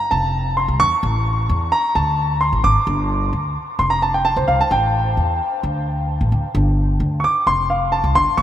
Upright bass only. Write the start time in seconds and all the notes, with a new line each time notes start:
0.12 F1
0.68 C2
0.80 E2
1.03 A1
1.49 E2
1.95 D2
2.52 A1
2.64 G#1
2.87 G1
3.33 D2
3.79 F1
4.36 C2
4.48 C2
4.71 A1
5.17 E2
5.63 D2
6.21 A1
6.32 D2
6.55 G1
7.00 D2
7.47 F1
8.04 C2
8.15 G1
8.38 A1